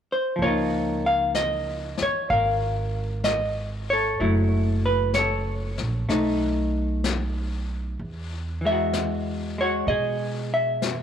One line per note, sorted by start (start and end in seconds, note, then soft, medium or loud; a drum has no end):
0.12 0.41 C5 medium
0.36 1.96 C#2 medium
0.36 4.18 F3 soft
0.36 brush sweep soft
0.42 4.20 A#3 soft
0.42 2.28 F4 soft
0.42 1.08 C#5 medium
0.47 2.32 D#4 soft
1.06 1.35 F5 medium
1.35 2.02 D#5 medium
1.35 brush sweep soft
1.35 snare soft
1.35 hi-hat pedal soft
1.97 muted upright bass stroke soft
1.97 snare soft
2.03 2.30 C#5 medium
2.29 4.16 G#1 medium
2.29 3.93 A#4 soft
2.29 3.24 F5 medium
2.29 brush sweep soft
3.24 3.90 D#5 medium
3.24 brush sweep soft
3.24 snare soft
3.24 hi-hat pedal soft
3.90 4.21 A4 soft
3.90 4.85 C#5 medium
4.19 5.76 F#1 medium
4.19 6.09 F#3 soft
4.19 6.08 A3 soft
4.19 5.17 E4 soft
4.19 brush sweep soft
4.86 5.13 B4 medium
5.14 6.09 A4 soft
5.14 6.70 C#5 medium
5.14 brush sweep soft
5.14 snare soft
5.14 hi-hat pedal soft
5.78 6.07 A#1 soft
5.78 snare soft
6.09 7.94 B1 medium
6.09 7.98 A3 soft
6.09 7.99 D#4 soft
6.09 brush sweep soft
6.09 snare soft
7.04 brush sweep soft
7.04 snare soft
7.04 hi-hat pedal medium
7.98 9.84 E2 medium
7.98 brush sweep soft
8.61 11.03 E3 soft
8.65 9.57 G#3 soft
8.65 9.60 E5 medium
8.71 9.60 F#4 soft
8.93 brush sweep soft
8.93 snare soft
8.93 hi-hat pedal soft
9.58 11.03 G#3 soft
9.58 9.88 F#4 soft
9.58 9.87 C#5 medium
9.87 11.03 B2 medium
9.87 11.03 G#4 soft
9.87 10.53 D#5 medium
9.87 brush sweep soft
10.54 11.03 E5 medium
10.82 brush sweep soft
10.82 snare soft
10.82 hi-hat pedal soft